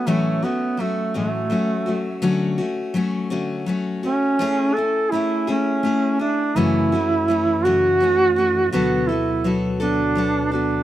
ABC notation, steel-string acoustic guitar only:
X:1
M:6/8
L:1/8
Q:3/8=55
K:A
V:1 name="Steel-string acoustic guitar"
[A,,E,F,A,CF] [F,A,CF] [F,A,CF] [A,,E,F,A,CF] [F,A,CF] [F,A,CF] | [D,F,A,CF] [A,CF] [F,A,CF] [D,F,A,CF] [F,A,CF] [A,CF] | [A,CEG] [CE] [A,CEG] [A,CEG] [A,CEG] [EG] | [F,,C,E,A,CF] [E,A,CF] [E,A,CF] [F,,C,E,A,CF] [E,A,CF] [E,A,CF] |
[D,F,B,FA] [B,FA] [F,B,FA] [D,F,B,FA] [F,B,FA] [B,FA] |]